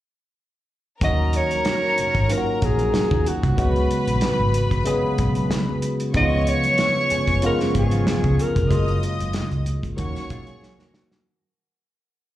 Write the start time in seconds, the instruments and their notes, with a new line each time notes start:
1.01 fingered electric bass D#2, tine electric piano D#3 F#3 A#3 C#4 F#4, string section A#4 A#5, alto saxophone D#5, kick, closed hi-hat, muted conga, low conga
1.33 alto saxophone C#5, closed hi-hat, muted conga
1.51 closed hi-hat, high conga
1.65 snare, closed hi-hat
1.98 muted fingered electric bass stroke, closed hi-hat, muted conga, low conga
2.15 fingered electric bass G#1, kick, closed hi-hat
2.29 tine electric piano D#3 F#3 A#3 C#4 F4, closed hi-hat, muted conga
2.33 alto saxophone A#4
2.37 tine electric piano F#4
2.62 fingered electric bass A#1, alto saxophone G#4, kick, closed hi-hat, muted conga
2.79 closed hi-hat, high conga
2.94 muted fingered electric bass stroke, snare, closed hi-hat, muted conga, high conga
3.11 fingered electric bass D#2, kick, low conga
3.26 alto saxophone F#4, closed hi-hat, muted conga
3.43 fingered electric bass C2, kick, closed hi-hat
3.58 fingered electric bass C#2, tine electric piano C#3 F#3 G#3 B3 F#4, string section B4 B5, kick, closed hi-hat, muted conga, low conga
3.76 closed hi-hat
3.90 closed hi-hat, muted conga
4.07 fingered electric bass A#1, closed hi-hat, high conga
4.21 snare, closed hi-hat, muted conga
4.39 fingered electric bass G#1
4.54 closed hi-hat, low conga
4.71 kick, closed hi-hat
4.85 tine electric piano C#3 F#3 G#3 B3 G#4, closed hi-hat, muted conga
5.04 muted fingered electric bass stroke
5.18 fingered electric bass B1, kick, closed hi-hat, muted conga
5.35 closed hi-hat, high conga
5.51 snare, closed hi-hat, muted conga, high conga
5.69 low conga
5.82 closed hi-hat
6.00 closed hi-hat
6.13 fingered electric bass C#2, tine electric piano C#3 F3 G#3 B3 D#4, string section C#5 C#6, alto saxophone D#5, kick, closed hi-hat, muted conga, low conga
6.22 tine electric piano F4
6.47 alto saxophone C#5, closed hi-hat, muted conga
6.64 closed hi-hat, high conga
6.78 snare, closed hi-hat
7.10 clean electric guitar B3 G#4, muted fingered electric bass stroke, closed hi-hat, low conga
7.28 fingered electric bass F#1, kick, closed hi-hat
7.42 tine electric piano C#3 F3 G#3 B3 F4, clean electric guitar D#4 B4, closed hi-hat, muted conga
7.46 alto saxophone A#4
7.60 clean electric guitar C#4 A#4, snare
7.75 fingered electric bass G#1, clean electric guitar B3 G#4, alto saxophone G#4, kick, closed hi-hat, muted conga
7.91 clean electric guitar G#3 F4, closed hi-hat, high conga
8.06 muted fingered electric bass stroke, snare, closed hi-hat, muted conga, high conga
8.24 fingered electric bass C#2, kick, closed hi-hat, low conga
8.39 alto saxophone A#4, closed hi-hat
8.56 fingered electric bass F1, kick, closed hi-hat
8.68 fingered electric bass F#1, tine electric piano C#3 F#3 G#3 A#3 F4, string section D#5 D#6, kick, closed hi-hat, low conga
8.88 closed hi-hat
9.03 closed hi-hat, muted conga
9.19 fingered electric bass F#1, closed hi-hat, high conga
9.33 muted fingered electric bass stroke, snare, closed hi-hat
9.51 fingered electric bass C#2, closed hi-hat
9.66 closed hi-hat, muted conga, low conga
9.83 kick, closed hi-hat
9.96 fingered electric bass D#2, tine electric piano D#3 F#3 A#3 C#4 F#4, string section C#5 C#6, kick, closed hi-hat
10.15 muted fingered electric bass stroke, snare, closed hi-hat
10.30 fingered electric bass B1, clean electric guitar G#3 F4, kick, closed hi-hat, muted conga
10.47 clean electric guitar G#4, closed hi-hat, high conga
10.61 snare, muted conga, high conga
10.78 clean electric guitar A#3 F#4, snare, low conga
10.94 snare
11.12 snare